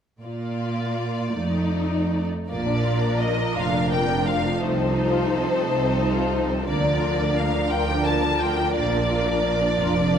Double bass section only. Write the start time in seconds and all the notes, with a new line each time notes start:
2.51 A#1
3.57 F1
4.62 C2
5.67 C2
6.69 D2
7.71 D2
8.75 A#1
9.79 F1